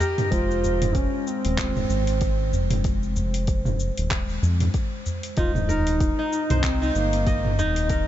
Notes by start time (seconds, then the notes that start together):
Already playing: D#4 D#5 G5
0.00 G4 A#4, udu, cabasa
0.18 mid tom, open hi-hat, cabasa
0.31 F1 G#3 F4 C5, kick, open hi-hat, cabasa
0.51 cabasa
0.64 udu, cabasa
0.82 mid tom, open hi-hat, cabasa
0.95 C#4, kick, open hi-hat, cabasa
1.27 C4, cabasa
1.45 D#1, open hi-hat, cabasa
1.58 kick, clap, open hi-hat, cabasa
1.76 mid tom, cabasa
1.90 G#1, cabasa
2.07 open hi-hat, cabasa
2.21 kick, open hi-hat, cabasa
2.53 F1, udu, cabasa
2.71 mid tom, open hi-hat, cabasa
2.84 kick, open hi-hat, cabasa
3.03 cabasa
3.16 udu, cabasa
3.34 open hi-hat, cabasa
3.47 kick, open hi-hat, cabasa
3.65 mid tom, cabasa
3.80 cabasa
3.98 D#1, open hi-hat, cabasa
4.11 kick, clap, open hi-hat, cabasa
4.30 cabasa
4.43 F2, udu, cabasa
4.60 mid tom, open hi-hat, cabasa
4.74 kick, open hi-hat, cabasa
5.06 udu, cabasa
5.23 open hi-hat, cabasa
5.37 D#1 D#4 F4, kick, open hi-hat, cabasa
5.55 mid tom, cabasa
5.69 D#4 A#4, udu, cabasa
5.87 open hi-hat, cabasa
6.00 kick, open hi-hat, cabasa
6.19 D#4
6.33 cabasa
6.50 C2 C5, mid tom, open hi-hat, cabasa
6.63 C4, kick, clap, open hi-hat, cabasa
6.82 D#4, cabasa
6.95 G1 A#3, cabasa
7.13 open hi-hat, cabasa
7.27 D#5, kick, open hi-hat, cabasa
7.45 mid tom
7.58 D#1 D#4, udu, cabasa
7.76 open hi-hat, cabasa
7.90 A#4, kick, open hi-hat, cabasa